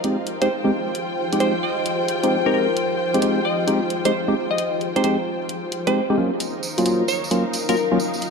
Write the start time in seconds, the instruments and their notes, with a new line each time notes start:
Already playing: ambient pad F3 D#4 G4 G#4 C5, string section D#4 F4 A#4 C5 F5
0.04 synth stab G#3 C4 D#4 G4, closed hi-hat
0.27 string section G5, closed hi-hat
0.42 synth stab G#3 C4 D#4 G4, synth pluck C5, closed hi-hat
0.64 synth stab G#3 C4 D#4 G4
0.95 closed hi-hat
1.33 synth stab G#3 C4 D#4 G4, closed hi-hat
1.40 synth stab G#3 C4 D#4 G4, synth pluck C5, closed hi-hat
1.63 synth pluck D#5
1.86 closed hi-hat
2.08 closed hi-hat
2.23 synth stab G#3 C4 D#4 G4, closed hi-hat
2.46 synth stab G#3 C4 D#4 G4, synth pluck A#4
2.54 synth stab G#3 C4 D#4 G4, synth pluck A#4
2.77 closed hi-hat
3.14 synth stab G#3 C4 D#4 G4, closed hi-hat
3.22 synth stab G#3 C4 D#4 G4, closed hi-hat
3.45 synth pluck D#5
3.68 synth stab G#3 C4 D#4 G4, closed hi-hat
3.90 closed hi-hat
4.05 synth stab G#3 C4 D#4 G4, synth pluck C5, closed hi-hat
4.28 synth stab G#3 C4 D#4 G4
4.51 synth pluck D#5
4.58 synth pluck D#5, closed hi-hat
4.81 closed hi-hat
4.96 synth stab G#3 C4 D#4 G4, synth pluck C5, closed hi-hat
5.04 synth stab G#3 C4 D#4 G4, synth pluck C5, closed hi-hat
5.49 closed hi-hat
5.72 closed hi-hat
5.87 synth stab G#3 C4 D#4 G4, synth pluck C5, closed hi-hat
6.10 synth stab G#3 C4 D#4 G4
6.18 ambient pad D#3 F#3 C#4 F4 A#4, synth stab F#3 A#3 C#4 F4, string section D#4
6.34 string section A#4
6.40 closed hi-hat, tambourine
6.63 tambourine
6.78 synth stab F#3 A#3 C#4 F4, closed hi-hat, tambourine
6.85 synth stab F#3 A#3 C#4 F4, string section F5, closed hi-hat, tambourine
7.08 synth pluck C#5, tambourine
7.24 tambourine
7.31 synth stab F#3 A#3 C#4 F4, closed hi-hat, tambourine
7.53 closed hi-hat, tambourine
7.69 synth stab F#3 A#3 C#4 F4, synth pluck A#4, closed hi-hat, tambourine
7.77 tambourine
7.92 synth stab F#3 A#3 C#4 F4
8.00 tambourine
8.14 tambourine
8.22 closed hi-hat, tambourine